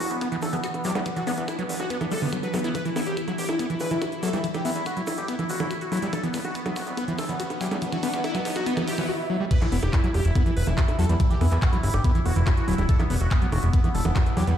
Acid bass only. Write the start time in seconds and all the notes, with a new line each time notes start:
0.21 B3
0.32 E3
0.53 E3
0.64 F#4
0.85 F#3
0.95 G3
1.06 E3
1.16 E3
1.27 B3
1.59 F#3
1.90 B3
2.01 E3
2.11 G3
2.22 D3
2.33 F#3
2.43 F#3
2.54 F#3
2.64 E4
2.75 E3
2.85 E3
2.96 B3
3.28 F#3
3.59 B3
3.70 E3
3.91 E3
4.02 F#4
4.23 F#3
4.33 G3
4.44 E3
4.54 E3
4.65 B3
4.97 F#3
5.28 B3
5.39 E3
5.60 E3
5.71 F#4
5.92 F#3
6.02 G3
6.13 E3
6.23 E3
6.34 B3
6.66 F#3
6.97 B3
7.08 E3
7.29 E3
7.40 F#4
7.61 F#3
7.71 G3
7.82 E3
7.92 E3
8.03 B3
8.35 F#3
8.66 B3
8.77 E3
8.98 E3
9.09 F#4
9.30 F#3
9.40 G3
9.51 E3
9.62 E3
9.72 B3
10.04 F#3
10.35 B3
10.46 E3
10.67 E3
10.78 F#4
10.99 F#3
11.09 G3
11.20 E3
11.31 E3
11.41 B3
11.73 F#3
12.04 B3
12.15 E3
12.36 E3
12.47 F#4
12.68 F#3
12.78 G3
12.89 E3
13.00 E3
13.10 B3
13.42 F#3
13.73 B3
13.84 E3
14.05 E3
14.16 F#4
14.37 F#3
14.47 G3